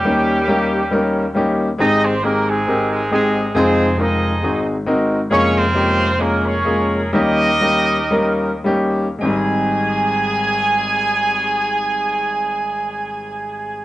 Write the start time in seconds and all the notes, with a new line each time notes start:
Already playing: G3 A#3 C#4 G4
0.05 D#2 D#3 G3 A#3 C#4 D#4 G4
0.48 G3 A#3 C#4 D#4 G4
0.91 G3 A#3 C#4 D#4 A#4
1.35 G3 A#3 C#4 D#4 G4
1.78 G#1 G#2 G#3 C4 D#4 G4 G#4 C5 D#5
2.04 C4 C5
2.23 G#3 A#3 C4 D#4 G4 G#4 A#4
2.48 G#3 C4 D#4 G#4
2.67 G#3 C4 D#4 G4 A#4
2.92 G#3 G#4
3.11 G#3 C4 D#4 G4 G#4
3.55 F1 F2 G#3 C4 D#4 F4 G#4 C5
3.98 G#3 C4 D#4 F4 G#4 A#4 C5 D#5
4.42 G#1 G#2 G#3 C4 D#4 F#4 G#4
4.86 G#3 C4 D#4 F#4 A#4
5.31 F1 F2 G#3 A#3 C#4 F4 G#4 A#4 C#5
5.57 C4 G#4 C5
5.75 G#3 A#3 C#4 F4 G4
6.19 G#3 A#3 C#4 F4 G#4 A#4
6.46 C#4 G#4 A#4 C#5
6.65 G#3 A#3 C#4 F4 G#4
7.13 D#2 D#3 G3 A#3 C#4 D#4 G4 A#4 D#5
7.60 G3 A#3 C#4 D#4 G4
8.11 G3 A#3 C#4 D#4 A#4
8.64 G3 A#3 C#4 D#4 G4
9.19 G#1 G#3 C4 G#4 G#5
9.23 G3 D#4